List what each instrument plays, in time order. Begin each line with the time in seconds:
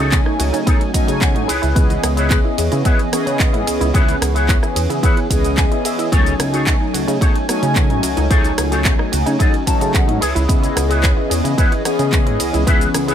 Already playing: analog synth bass C#2, analog polysynth F#3 A3 C#4 D#4 G#5, clean electric guitar D#4
0.00 clean electric guitar G#4 A4 C#5
0.12 synth arpeggio sound B3, kick, clap, closed hi-hat, shaker
0.26 synth arpeggio sound D#4, cross-stick
0.39 analog synth bass C#2, synth arpeggio sound F#4, muted clean electric guitar stroke, open hi-hat, ride, shaker
0.53 analog synth bass C#3, synth arpeggio sound D#4, closed hi-hat, shaker
0.66 synth arpeggio sound B3, clean electric guitar D#4 G#4 A4 C#5, kick, closed hi-hat, shaker
0.80 synth arpeggio sound D#4, closed hi-hat
0.94 analog polysynth F#3 A3 C#4 D#4 G#5, synth arpeggio sound B3, clean electric guitar D#5, muted clean electric guitar stroke, kick, open hi-hat, ride, shaker
1.07 analog synth bass C#3, synth arpeggio sound F#4, closed hi-hat, shaker
1.21 synth arpeggio sound B3, clean electric guitar F#5, kick, clap, closed hi-hat, shaker
1.35 analog synth bass G#2, synth arpeggio sound D#4, closed hi-hat
1.48 analog synth bass C#2, clean electric guitar E4 G#4 B4 C#5 G#5, synth arpeggio sound G#4, open hi-hat, ride, shaker
1.62 analog synth bass C#2, synth arpeggio sound E4, closed hi-hat, shaker
1.75 analog synth bass C#2, analog polysynth E3 B3 C#4 G#4 D#5, synth arpeggio sound B3, kick, closed hi-hat, shaker
1.89 synth arpeggio sound E4, closed hi-hat, shaker
2.03 analog synth bass C#2, synth arpeggio sound B3, cross-stick, open hi-hat, ride, shaker
2.16 clean electric guitar E4 G#4 B4 C#5, synth arpeggio sound G#4, closed hi-hat, shaker
2.30 synth arpeggio sound B3, kick, clap, closed hi-hat, shaker
2.44 synth arpeggio sound E4
2.57 analog synth bass E2, synth arpeggio sound G#4, muted clean electric guitar stroke, open hi-hat, ride, shaker
2.72 analog synth bass C#3, synth arpeggio sound E4, closed hi-hat, shaker
2.84 synth arpeggio sound B3, clean electric guitar E4 G#4 B4 C#5, kick, closed hi-hat, shaker
2.99 synth arpeggio sound E4, closed hi-hat
3.11 analog polysynth E3 B3 C#4 G#4 D#5, synth arpeggio sound B3, muted clean electric guitar stroke, cross-stick, open hi-hat, ride, shaker
3.26 analog synth bass C#3, synth arpeggio sound G#4, closed hi-hat, shaker
3.39 synth arpeggio sound B3, kick, clap, closed hi-hat, shaker
3.53 analog synth bass G#2, synth arpeggio sound E4, closed hi-hat
3.66 analog synth bass C#2, synth arpeggio sound G#4, muted clean electric guitar stroke, open hi-hat, ride, shaker
3.80 analog synth bass C#2, synth arpeggio sound E4, muted clean electric guitar stroke, closed hi-hat, shaker
3.93 analog synth bass C#2, analog polysynth E3 B3 C#4 G#4, synth arpeggio sound B3, clean electric guitar E4 G#4 B4 C#5, kick, closed hi-hat, shaker
4.08 synth arpeggio sound E4, closed hi-hat, shaker
4.21 analog synth bass C#2, synth arpeggio sound B3, cross-stick, open hi-hat, ride, shaker
4.34 clean electric guitar E4 G#4 B4 C#5, synth arpeggio sound G#4, closed hi-hat, shaker
4.49 synth arpeggio sound B3, kick, clap, closed hi-hat, shaker
4.63 synth arpeggio sound E4, cross-stick, shaker
4.75 analog synth bass E2, synth arpeggio sound G#4, muted clean electric guitar stroke, open hi-hat, ride, shaker
4.90 analog synth bass C#3, synth arpeggio sound E4, closed hi-hat, shaker
5.03 synth arpeggio sound B3, clean electric guitar E4 G#4 B4 C#5, kick, closed hi-hat, shaker
5.17 synth arpeggio sound E4, closed hi-hat
5.30 analog synth bass C#2, analog polysynth E3 B3 C#4 G#4 D#5, synth arpeggio sound B3, muted clean electric guitar stroke, kick, open hi-hat, ride, shaker
5.44 synth arpeggio sound G#4, closed hi-hat, shaker
5.57 synth arpeggio sound B3, clean electric guitar G#5, kick, clap, closed hi-hat, shaker
5.71 synth arpeggio sound E4, closed hi-hat
5.85 synth arpeggio sound G#4, clean electric guitar E5, muted clean electric guitar stroke, open hi-hat, ride, shaker
5.98 synth arpeggio sound E4, muted clean electric guitar stroke, closed hi-hat, shaker
6.11 analog synth bass C#2, analog polysynth F#3 A3 C#4 D#4 G#5, synth arpeggio sound B3, clean electric guitar D#4 G#4 A4 C#5, kick, closed hi-hat, shaker
6.26 synth arpeggio sound D#4, closed hi-hat, shaker
6.39 analog synth bass C#2, synth arpeggio sound B3, cross-stick, open hi-hat, ride, shaker
6.53 clean electric guitar D#4 G#4 A4 C#5, synth arpeggio sound F#4, closed hi-hat, shaker
6.66 synth arpeggio sound B3, kick, clap, closed hi-hat, shaker
6.80 synth arpeggio sound D#4
6.93 analog synth bass C#2, synth arpeggio sound F#4, muted clean electric guitar stroke, open hi-hat, ride, shaker
7.08 analog synth bass C#3, synth arpeggio sound D#4, closed hi-hat, shaker
7.20 synth arpeggio sound B3, clean electric guitar D#4 G#4 A4 C#5, kick, closed hi-hat, shaker
7.35 synth arpeggio sound D#4, closed hi-hat
7.48 analog polysynth F#3 A3 C#4 D#4 G#5, synth arpeggio sound B3, muted clean electric guitar stroke, cross-stick, open hi-hat, ride, shaker
7.62 analog synth bass C#3, synth arpeggio sound F#4, closed hi-hat, shaker
7.76 synth arpeggio sound B3, kick, clap, closed hi-hat, shaker
7.90 analog synth bass G#2, synth arpeggio sound D#4, closed hi-hat
8.02 analog synth bass C#2, synth arpeggio sound F#4, muted clean electric guitar stroke, open hi-hat, ride, shaker
8.16 analog synth bass C#2, synth arpeggio sound D#4, muted clean electric guitar stroke, closed hi-hat, shaker
8.29 analog synth bass C#2, analog polysynth F#3 A3 C#4 D#4 G#5, synth arpeggio sound B3, clean electric guitar D#4 G#4 A4 C#5, kick, closed hi-hat, shaker
8.44 synth arpeggio sound D#4, closed hi-hat, shaker
8.58 analog synth bass C#2, synth arpeggio sound B3, cross-stick, open hi-hat, ride, shaker
8.71 clean electric guitar D#4 G#4 A4 C#5, synth arpeggio sound F#4, closed hi-hat, shaker
8.85 synth arpeggio sound B3, kick, clap, closed hi-hat, shaker
8.99 synth arpeggio sound D#4, cross-stick
9.12 analog synth bass C#2, synth arpeggio sound F#4, muted clean electric guitar stroke, open hi-hat, ride, shaker
9.26 analog synth bass C#3, synth arpeggio sound D#4, closed hi-hat, shaker
9.39 synth arpeggio sound B3, clean electric guitar D#4 G#4 A4 D#5, kick, closed hi-hat, shaker
9.53 synth arpeggio sound D#4, closed hi-hat
9.66 analog polysynth F#3 A3 C#4 D#4, synth arpeggio sound B3, clean electric guitar A5, muted clean electric guitar stroke, kick, open hi-hat, ride, shaker
9.80 analog synth bass C#3, synth arpeggio sound F#4, closed hi-hat, shaker
9.94 synth arpeggio sound B3, clean electric guitar F#5, kick, clap, closed hi-hat, shaker
10.08 analog synth bass G#2, synth arpeggio sound D#4, closed hi-hat
10.21 analog synth bass C#2, clean electric guitar E4 G#4 B4 C#5, synth arpeggio sound G#4, open hi-hat, ride, shaker
10.35 analog synth bass C#2, synth arpeggio sound E4, closed hi-hat, shaker
10.48 analog synth bass C#2, analog polysynth E3 B3 C#4 G#4 D#5, synth arpeggio sound B3, kick, closed hi-hat, shaker
10.63 synth arpeggio sound E4, closed hi-hat, shaker
10.76 analog synth bass C#2, synth arpeggio sound B3, cross-stick, open hi-hat, ride, shaker
10.89 clean electric guitar E4 G#4 B4 C#5, synth arpeggio sound G#4, closed hi-hat, shaker
11.03 synth arpeggio sound B3, kick, clap, closed hi-hat, shaker
11.17 synth arpeggio sound E4
11.30 analog synth bass E2, synth arpeggio sound G#4, muted clean electric guitar stroke, open hi-hat, ride, shaker
11.44 analog synth bass C#3, synth arpeggio sound E4, closed hi-hat, shaker
11.57 synth arpeggio sound B3, clean electric guitar E4 G#4 B4 C#5, kick, closed hi-hat, shaker
11.72 synth arpeggio sound E4, closed hi-hat
11.84 analog polysynth E3 B3 C#4 G#4 D#5, synth arpeggio sound B3, muted clean electric guitar stroke, cross-stick, open hi-hat, ride, shaker
11.99 analog synth bass C#3, synth arpeggio sound G#4, closed hi-hat, shaker
12.12 synth arpeggio sound B3, kick, clap, closed hi-hat, shaker
12.26 analog synth bass G#2, synth arpeggio sound E4, closed hi-hat
12.39 analog synth bass C#2, synth arpeggio sound G#4, muted clean electric guitar stroke, open hi-hat, ride, shaker
12.53 analog synth bass C#2, synth arpeggio sound E4, muted clean electric guitar stroke, closed hi-hat, shaker
12.66 analog synth bass C#2, analog polysynth E3 B3 C#4 G#4, synth arpeggio sound B3, clean electric guitar E4 G#4 B4 E5, kick, closed hi-hat, shaker
12.81 synth arpeggio sound E4, closed hi-hat, shaker
12.94 analog synth bass C#2, synth arpeggio sound B3, cross-stick, open hi-hat, ride, shaker
13.07 clean electric guitar E4 G#4 B4 C#5, synth arpeggio sound G#4, closed hi-hat, shaker